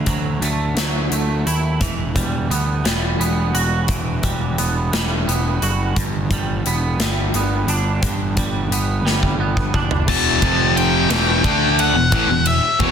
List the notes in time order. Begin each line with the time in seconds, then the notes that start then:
Already playing: D3 A3 E4
0.06 D2 F#3, kick, closed hi-hat
0.41 D2 A3, closed hi-hat
0.76 D2 F#3, snare, closed hi-hat
1.11 D2 A3, closed hi-hat
1.46 D#2 E4, closed hi-hat
1.80 E1 E3, kick, closed hi-hat
2.15 E1 G3, kick, closed hi-hat
2.50 D2 B3, closed hi-hat
2.85 E1 G3, snare, closed hi-hat
3.18 E1 B3, closed hi-hat
3.53 E1 F#4, closed hi-hat
3.88 E1 E3, kick, closed hi-hat
4.23 E1 G3, kick, closed hi-hat
4.58 E1 B3, closed hi-hat
4.93 E1 G3, snare, closed hi-hat
5.27 E1 B3, closed hi-hat
5.61 F#1 F#4, closed hi-hat
5.96 G1 G2, kick, closed hi-hat
6.30 G1 G3, kick, closed hi-hat
6.65 E1 B3, closed hi-hat
6.98 G1 G3, snare, closed hi-hat
7.33 G1 B3, closed hi-hat
7.67 G1 D4, closed hi-hat
8.02 G1 G2, kick, closed hi-hat
8.37 G1 G3, kick, closed hi-hat
8.69 G1 B3, closed hi-hat
9.03 G1 G3, snare
9.23 kick
9.37 G1 B3
9.57 kick
9.74 F#1 D4, kick
9.91 floor tom
10.07 E1 E2 B2 E3 A5, kick, crash
10.41 F1 F2 C3 F3, kick, ride
10.77 G5, ride
11.10 E1 E2 B2 E3, snare, ride
11.43 D2 D3 A3 D4, kick, ride
11.79 F#5, ride
11.94 E1 E2 B2
12.12 A1 A2 E3, kick, ride
12.27 E1 E2 B2
12.46 E5, ride
12.79 E1 E2 B2 E3 C#5, kick, ride